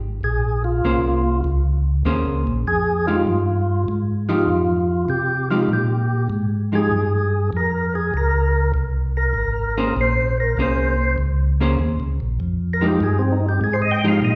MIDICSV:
0, 0, Header, 1, 4, 480
1, 0, Start_track
1, 0, Key_signature, -4, "minor"
1, 0, Tempo, 608519
1, 177, Time_signature, 4, 2, 24, 8
1, 11322, End_track
2, 0, Start_track
2, 0, Title_t, "Tonewheel organ"
2, 0, Program_c, 0, 16
2, 191, Note_on_c, 0, 68, 80
2, 496, Note_off_c, 0, 68, 0
2, 507, Note_on_c, 0, 65, 67
2, 1109, Note_off_c, 0, 65, 0
2, 2111, Note_on_c, 0, 68, 97
2, 2415, Note_off_c, 0, 68, 0
2, 2424, Note_on_c, 0, 65, 82
2, 3027, Note_off_c, 0, 65, 0
2, 3382, Note_on_c, 0, 65, 77
2, 3986, Note_off_c, 0, 65, 0
2, 4021, Note_on_c, 0, 67, 78
2, 4329, Note_off_c, 0, 67, 0
2, 4343, Note_on_c, 0, 65, 72
2, 4493, Note_off_c, 0, 65, 0
2, 4522, Note_on_c, 0, 67, 69
2, 4957, Note_off_c, 0, 67, 0
2, 5328, Note_on_c, 0, 68, 82
2, 5919, Note_off_c, 0, 68, 0
2, 5968, Note_on_c, 0, 70, 90
2, 6263, Note_off_c, 0, 70, 0
2, 6273, Note_on_c, 0, 68, 79
2, 6418, Note_off_c, 0, 68, 0
2, 6446, Note_on_c, 0, 70, 81
2, 6879, Note_off_c, 0, 70, 0
2, 7234, Note_on_c, 0, 70, 80
2, 7833, Note_off_c, 0, 70, 0
2, 7895, Note_on_c, 0, 72, 86
2, 8188, Note_off_c, 0, 72, 0
2, 8204, Note_on_c, 0, 70, 85
2, 8345, Note_off_c, 0, 70, 0
2, 8376, Note_on_c, 0, 72, 75
2, 8805, Note_off_c, 0, 72, 0
2, 10045, Note_on_c, 0, 70, 82
2, 10149, Note_off_c, 0, 70, 0
2, 10163, Note_on_c, 0, 67, 74
2, 10248, Note_off_c, 0, 67, 0
2, 10280, Note_on_c, 0, 68, 95
2, 10403, Note_on_c, 0, 60, 54
2, 10426, Note_off_c, 0, 68, 0
2, 10507, Note_on_c, 0, 63, 78
2, 10567, Note_off_c, 0, 60, 0
2, 10620, Note_off_c, 0, 63, 0
2, 10638, Note_on_c, 0, 67, 72
2, 10726, Note_off_c, 0, 67, 0
2, 10757, Note_on_c, 0, 68, 72
2, 10834, Note_on_c, 0, 72, 86
2, 10853, Note_off_c, 0, 68, 0
2, 10892, Note_off_c, 0, 72, 0
2, 10900, Note_on_c, 0, 75, 74
2, 10975, Note_on_c, 0, 79, 102
2, 11057, Note_off_c, 0, 75, 0
2, 11095, Note_off_c, 0, 79, 0
2, 11108, Note_on_c, 0, 77, 88
2, 11202, Note_off_c, 0, 77, 0
2, 11236, Note_on_c, 0, 75, 83
2, 11322, Note_off_c, 0, 75, 0
2, 11322, End_track
3, 0, Start_track
3, 0, Title_t, "Hollow-body jazz guitar"
3, 0, Program_c, 1, 26
3, 667, Note_on_c, 1, 58, 55
3, 669, Note_on_c, 1, 61, 56
3, 671, Note_on_c, 1, 68, 53
3, 674, Note_on_c, 1, 72, 61
3, 951, Note_off_c, 1, 58, 0
3, 952, Note_off_c, 1, 61, 0
3, 953, Note_off_c, 1, 68, 0
3, 954, Note_off_c, 1, 72, 0
3, 1620, Note_on_c, 1, 58, 65
3, 1625, Note_on_c, 1, 61, 65
3, 1628, Note_on_c, 1, 72, 64
3, 1629, Note_on_c, 1, 68, 72
3, 1907, Note_off_c, 1, 58, 0
3, 1910, Note_off_c, 1, 61, 0
3, 1911, Note_off_c, 1, 68, 0
3, 1911, Note_off_c, 1, 72, 0
3, 2428, Note_on_c, 1, 53, 60
3, 2428, Note_on_c, 1, 56, 65
3, 2429, Note_on_c, 1, 63, 61
3, 2431, Note_on_c, 1, 67, 61
3, 2565, Note_off_c, 1, 53, 0
3, 2565, Note_off_c, 1, 56, 0
3, 2566, Note_off_c, 1, 63, 0
3, 2567, Note_off_c, 1, 67, 0
3, 3382, Note_on_c, 1, 53, 61
3, 3382, Note_on_c, 1, 56, 61
3, 3386, Note_on_c, 1, 63, 64
3, 3388, Note_on_c, 1, 67, 75
3, 3522, Note_off_c, 1, 53, 0
3, 3522, Note_off_c, 1, 56, 0
3, 3524, Note_off_c, 1, 63, 0
3, 3525, Note_off_c, 1, 67, 0
3, 4341, Note_on_c, 1, 53, 59
3, 4347, Note_on_c, 1, 56, 60
3, 4347, Note_on_c, 1, 63, 59
3, 4353, Note_on_c, 1, 67, 72
3, 4481, Note_off_c, 1, 53, 0
3, 4484, Note_off_c, 1, 56, 0
3, 4484, Note_off_c, 1, 63, 0
3, 4487, Note_off_c, 1, 67, 0
3, 5301, Note_on_c, 1, 53, 46
3, 5305, Note_on_c, 1, 56, 50
3, 5308, Note_on_c, 1, 63, 50
3, 5313, Note_on_c, 1, 67, 50
3, 5441, Note_off_c, 1, 53, 0
3, 5443, Note_off_c, 1, 56, 0
3, 5444, Note_off_c, 1, 63, 0
3, 5447, Note_off_c, 1, 67, 0
3, 7710, Note_on_c, 1, 58, 60
3, 7711, Note_on_c, 1, 68, 64
3, 7716, Note_on_c, 1, 61, 66
3, 7716, Note_on_c, 1, 72, 69
3, 7846, Note_off_c, 1, 58, 0
3, 7847, Note_off_c, 1, 68, 0
3, 7849, Note_off_c, 1, 61, 0
3, 7849, Note_off_c, 1, 72, 0
3, 8350, Note_on_c, 1, 58, 57
3, 8356, Note_on_c, 1, 61, 56
3, 8359, Note_on_c, 1, 68, 57
3, 8359, Note_on_c, 1, 72, 56
3, 8633, Note_off_c, 1, 58, 0
3, 8635, Note_off_c, 1, 61, 0
3, 8637, Note_off_c, 1, 68, 0
3, 8637, Note_off_c, 1, 72, 0
3, 9154, Note_on_c, 1, 58, 63
3, 9160, Note_on_c, 1, 61, 62
3, 9163, Note_on_c, 1, 68, 66
3, 9165, Note_on_c, 1, 72, 69
3, 9289, Note_off_c, 1, 58, 0
3, 9292, Note_off_c, 1, 61, 0
3, 9294, Note_off_c, 1, 68, 0
3, 9295, Note_off_c, 1, 72, 0
3, 10105, Note_on_c, 1, 53, 62
3, 10107, Note_on_c, 1, 56, 59
3, 10113, Note_on_c, 1, 63, 70
3, 10116, Note_on_c, 1, 67, 68
3, 10245, Note_off_c, 1, 53, 0
3, 10247, Note_off_c, 1, 56, 0
3, 10250, Note_off_c, 1, 63, 0
3, 10251, Note_off_c, 1, 67, 0
3, 11074, Note_on_c, 1, 53, 66
3, 11078, Note_on_c, 1, 56, 68
3, 11078, Note_on_c, 1, 63, 76
3, 11081, Note_on_c, 1, 67, 67
3, 11211, Note_off_c, 1, 53, 0
3, 11213, Note_off_c, 1, 56, 0
3, 11213, Note_off_c, 1, 63, 0
3, 11215, Note_off_c, 1, 67, 0
3, 11322, End_track
4, 0, Start_track
4, 0, Title_t, "Tonewheel organ"
4, 0, Program_c, 2, 16
4, 0, Note_on_c, 2, 32, 88
4, 164, Note_off_c, 2, 32, 0
4, 184, Note_on_c, 2, 34, 78
4, 646, Note_off_c, 2, 34, 0
4, 665, Note_on_c, 2, 36, 78
4, 1126, Note_off_c, 2, 36, 0
4, 1138, Note_on_c, 2, 37, 85
4, 1603, Note_off_c, 2, 37, 0
4, 1616, Note_on_c, 2, 39, 87
4, 1771, Note_off_c, 2, 39, 0
4, 1780, Note_on_c, 2, 37, 54
4, 1938, Note_off_c, 2, 37, 0
4, 1949, Note_on_c, 2, 34, 67
4, 2092, Note_off_c, 2, 34, 0
4, 2108, Note_on_c, 2, 41, 79
4, 2567, Note_off_c, 2, 41, 0
4, 2582, Note_on_c, 2, 43, 81
4, 3044, Note_off_c, 2, 43, 0
4, 3063, Note_on_c, 2, 44, 81
4, 3525, Note_off_c, 2, 44, 0
4, 3535, Note_on_c, 2, 41, 88
4, 4000, Note_off_c, 2, 41, 0
4, 4011, Note_on_c, 2, 48, 80
4, 4478, Note_off_c, 2, 48, 0
4, 4487, Note_on_c, 2, 46, 82
4, 4956, Note_off_c, 2, 46, 0
4, 4966, Note_on_c, 2, 44, 79
4, 5436, Note_off_c, 2, 44, 0
4, 5455, Note_on_c, 2, 43, 81
4, 5920, Note_off_c, 2, 43, 0
4, 5936, Note_on_c, 2, 41, 75
4, 6401, Note_off_c, 2, 41, 0
4, 6419, Note_on_c, 2, 37, 78
4, 6882, Note_off_c, 2, 37, 0
4, 6892, Note_on_c, 2, 36, 78
4, 7359, Note_off_c, 2, 36, 0
4, 7368, Note_on_c, 2, 32, 84
4, 7837, Note_off_c, 2, 32, 0
4, 7860, Note_on_c, 2, 34, 80
4, 8324, Note_off_c, 2, 34, 0
4, 8339, Note_on_c, 2, 36, 79
4, 8803, Note_off_c, 2, 36, 0
4, 8817, Note_on_c, 2, 37, 80
4, 9283, Note_off_c, 2, 37, 0
4, 9300, Note_on_c, 2, 39, 91
4, 9454, Note_off_c, 2, 39, 0
4, 9464, Note_on_c, 2, 37, 55
4, 9621, Note_off_c, 2, 37, 0
4, 9625, Note_on_c, 2, 34, 65
4, 9771, Note_off_c, 2, 34, 0
4, 9780, Note_on_c, 2, 41, 82
4, 10246, Note_off_c, 2, 41, 0
4, 10258, Note_on_c, 2, 43, 81
4, 10725, Note_off_c, 2, 43, 0
4, 10735, Note_on_c, 2, 44, 85
4, 11205, Note_off_c, 2, 44, 0
4, 11216, Note_on_c, 2, 46, 91
4, 11322, Note_off_c, 2, 46, 0
4, 11322, End_track
0, 0, End_of_file